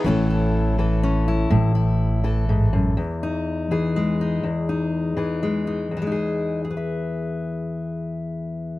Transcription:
0.04 upright bass A1, steel-string acoustic guitar A2 E3 C#4 E4 A4
0.30 steel-string acoustic guitar E4
0.78 steel-string acoustic guitar E3 A4
1.03 steel-string acoustic guitar C#4
1.28 steel-string acoustic guitar E4
1.50 upright bass A1, steel-string acoustic guitar A2
1.75 steel-string acoustic guitar E4
2.24 steel-string acoustic guitar E3 A4
2.49 steel-string acoustic guitar G#2
2.73 steel-string acoustic guitar F#2
2.97 steel-string acoustic guitar E2
3.23 steel-string acoustic guitar D#4
3.71 steel-string acoustic guitar E3 G#4
3.96 steel-string acoustic guitar G#3
4.21 steel-string acoustic guitar D#4
4.43 steel-string acoustic guitar E2
4.69 steel-string acoustic guitar D#4
5.17 steel-string acoustic guitar E3 G#4
5.43 steel-string acoustic guitar G#3
5.67 steel-string acoustic guitar D#4
5.91 steel-string acoustic guitar E2
5.97 steel-string acoustic guitar E3
6.02 steel-string acoustic guitar G#3
6.07 steel-string acoustic guitar D#4
6.12 steel-string acoustic guitar G#4
6.65 steel-string acoustic guitar G#4
6.71 steel-string acoustic guitar B4
6.77 steel-string acoustic guitar E5

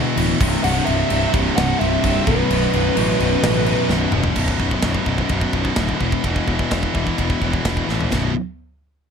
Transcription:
Already playing: distorted electric guitar E2 B2 E3
0.16 picked electric bass D1, distorted electric guitar E2 B2 E3, crash
0.40 picked electric bass C1, distorted electric guitar C2 G2 C3, kick, crash
0.63 picked electric bass C1, distorted electric guitar C2 G2 C3, lead electric guitar F#5, crash
0.86 picked electric bass C1, distorted electric guitar C2 G2 C3, lead electric guitar E5, crash
1.10 picked electric bass C1, distorted electric guitar C2 G2 C3, crash
1.33 picked electric bass C1, distorted electric guitar C2 G2 C3, kick, crash
1.56 picked electric bass C1, distorted electric guitar C2 G2 C3, lead electric guitar F#5, snare, crash
1.80 picked electric bass C1, distorted electric guitar C2 G2 C3, lead electric guitar E5, crash
2.03 picked electric bass C1, distorted electric guitar C2 G2 C3, kick, crash
2.26 picked electric bass B0, distorted electric guitar B1 F#2 B2, lead electric guitar B4, kick, crash
2.50 picked electric bass B0, distorted electric guitar B1 F#2 B2, crash
2.73 picked electric bass B0, distorted electric guitar B1 F#2 B2, crash
2.96 picked electric bass A1, distorted electric guitar B1 F#2 B2, crash
3.19 picked electric bass B0, distorted electric guitar B1 F#2 B2, crash
3.43 picked electric bass A1, distorted electric guitar B1 F#2 B2, snare, crash
3.65 distorted electric guitar B1 F#2 B2, crash
3.89 picked electric bass B0, distorted electric guitar B1 F#2 B2, snare
4.12 picked electric bass E1, distorted electric guitar B1 F#2 B2, mid tom
4.23 floor tom
4.36 picked electric bass B0, distorted electric guitar B1 F#2 B2, kick, crash
4.48 kick
4.59 picked electric bass B0, distorted electric guitar B1 F#2 B2, kick
4.71 kick
4.82 picked electric bass B0, distorted electric guitar B1 F#2 B2, kick, snare, ride bell
4.95 kick
5.06 picked electric bass B0, distorted electric guitar B1 F#2 B2, kick
5.18 kick
5.29 picked electric bass B0, distorted electric guitar B1 F#2 B2, kick, ride bell
5.41 kick
5.53 picked electric bass B0, distorted electric guitar B1 F#2 B2, kick
5.65 kick
5.76 picked electric bass D1, distorted electric guitar B1 F#2 B2, kick, snare, ride bell
5.89 kick
6.00 picked electric bass E1, distorted electric guitar E2 B2 E3, kick
6.12 kick
6.24 picked electric bass E1, distorted electric guitar E2 B2 E3, kick, ride bell
6.36 kick
6.47 picked electric bass E1, distorted electric guitar E2 B2 E3, kick
6.59 kick
6.70 picked electric bass E1, distorted electric guitar E2 B2 E3, kick, snare, ride bell
6.83 kick
6.93 picked electric bass E1, distorted electric guitar E2 B2 E3, kick
7.07 kick
7.17 picked electric bass E1, distorted electric guitar E2 B2 E3, kick, ride bell
7.30 kick
7.40 picked electric bass E1, distorted electric guitar E2 B2 E3, kick
7.53 kick
7.64 picked electric bass E1, distorted electric guitar E2 B2 E3, kick, snare, ride bell
7.77 kick
7.86 picked electric bass A1, distorted electric guitar E2 B2 E3, snare
8.01 floor tom
8.10 picked electric bass B0, distorted electric guitar B1 F#2 B2, kick, snare, ride bell

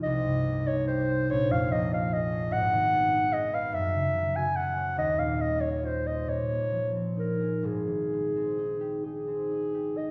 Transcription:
Already playing: harp C4 D#4
0.03 harp C2, clarinet D#5
0.26 harp G2
0.47 harp A#3
0.66 harp D#4, clarinet C#5
0.88 harp G4, clarinet C5
1.09 harp C5
1.30 harp A#1, clarinet C#5
1.49 harp F2, clarinet F5
1.70 harp A#3, clarinet D#5
1.91 harp F4, clarinet F5
2.10 harp G#4, clarinet D#5
2.32 harp C#5
2.51 harp G#1 G#2, clarinet F#5
2.73 harp D#3
2.92 harp B3
3.12 harp D#4
3.31 harp G#4, clarinet D#5
3.53 harp B4, clarinet F5
3.72 harp F#2, clarinet E5
3.93 harp C#3
4.14 harp F#3
4.36 harp F#4, clarinet G#5
4.56 harp A4, clarinet F#5
4.78 harp C#5
4.96 harp D#1 D#2, clarinet D#5
5.18 harp A#2, clarinet F5
5.39 harp G3, clarinet D#5
5.60 harp C#4, clarinet C#5
5.82 harp F4, clarinet C5
6.04 harp C5, clarinet D#5
6.27 harp A#2, clarinet C#5
6.50 harp A#3
6.72 harp F3
6.95 harp C4
7.16 harp D#4, clarinet A#4
7.40 harp G#4
7.63 harp G#1 G#2, clarinet G#4
7.87 harp D#3
8.14 harp G#3
8.36 harp C4
8.58 harp D#4
8.81 harp G4
9.04 harp D#4, clarinet G#4
9.27 harp C4
9.51 harp D#4
9.74 harp G4
9.97 harp D#4, clarinet D#5

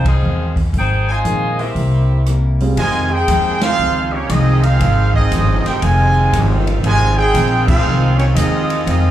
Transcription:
Already playing: upright bass C2, grand piano F3 A#3 D#4 G#4
0.05 saxophone section C4 F4 G#4 D#5, kick, ride
0.22 upright bass E2, steel-string acoustic guitar F2 D#3 G#3 C4
0.56 kick, open hi-hat
0.73 upright bass G#1, steel-string acoustic guitar F2 D#3 G#3 C4, kick, open hi-hat
0.78 saxophone section D#4 G#4 C5 G5
1.08 trumpet section F4 C5 D#5 G#5, saxophone section F4 C5 D#5 G#5
1.24 upright bass A#1, steel-string acoustic guitar F2 D#3 G#3 C4, grand piano F3 A#3 D#4 G#4, closed hi-hat
1.59 trombone section G3 A#3 E4, saxophone section C4 G4 A#4 E5, open hi-hat
1.75 upright bass C2, steel-string acoustic guitar C3 G3 A#3, kick, open hi-hat
1.79 steel-string acoustic guitar E4
2.26 steel-string acoustic guitar C3 G3 A#3 E4, cross-stick, closed hi-hat
2.60 grand piano G3 C4 F4 G#4, open hi-hat
2.76 upright bass F2, steel-string acoustic guitar F2 D#3 G#3, trombone section C3 D#3 G#3, saxophone section D#3 G#3 C4 F4, trumpet section F4 C5 D#5 G#5, kick, ride
2.81 steel-string acoustic guitar C4
3.11 trumpet section D#4 G#4 C5 G5, trombone section G#4
3.28 upright bass D#2, steel-string acoustic guitar F2 D#3 G#3 C4, kick, hi-hat pedal, ride
3.61 trombone section G#3 C4 F4, trumpet section D#4 G#4 C5 F5, snare, ride
3.79 upright bass C#2, steel-string acoustic guitar F2 D#3 G#3 C4
4.13 trumpet section A#3 D#4 G4 C#5, trombone section C#4
4.29 upright bass C2, steel-string acoustic guitar F2 D#3 G#3 C4, trombone section G#3 C4 D#4, trumpet section C4 F4 G#4 D#5, kick, hi-hat pedal, ride
4.63 trombone section G#3 C4 F4, trumpet section D#4 G#4 C5 F5, ride
4.80 upright bass G#1, steel-string acoustic guitar F2 D#3 G#3 C4, kick, ride
5.15 trombone section G#3 C4 D#4, trumpet section C4 F4 G#4 D#5, kick
5.31 upright bass G1, steel-string acoustic guitar F2 D#3 G#3 C4, kick, hi-hat pedal, ride
5.65 trumpet section D#4 G#4 C5 G5, trombone section G4, muted upright bass stroke, snare, ride
5.82 upright bass F1, steel-string acoustic guitar F2 D#3 G#3 C4, trombone section C3 D#3 G#3, trumpet section F4 C5 D#5 G#5, kick, ride
6.33 upright bass G1, steel-string acoustic guitar F2 D#3 G#3 C4, kick, hi-hat pedal, ride
6.67 ride
6.83 upright bass G#1, steel-string acoustic guitar F2 D#3 G#3 C4, trombone section C3 D#3 G#3, trumpet section F4 C5 D#5 G#5, kick, ride
7.16 trumpet section D#4 G#4 C5 G5, trombone section G#4
7.34 upright bass A#1, steel-string acoustic guitar F2 D#3 G#3 C4, kick, hi-hat pedal, ride
7.66 trombone section G#3 C4 F4, trumpet section D#4 G#4 C5 F5, kick, crash
7.85 upright bass C2, steel-string acoustic guitar F2 D#3 G#3 C4
8.16 trumpet section A#3 D#4 G4 C#5, trombone section C#4, ride
8.34 upright bass D#2, steel-string acoustic guitar F2 D#3 G#3 C4, trombone section G#3 C4 D#4, trumpet section C4 F4 G#4 D#5, kick, hi-hat pedal, ride
8.70 ride
8.85 upright bass F2, steel-string acoustic guitar F2 D#3, trombone section G#3 C4 D#4, trumpet section C4 F4 G#4 D#5, kick, ride
8.90 steel-string acoustic guitar G#3 C4

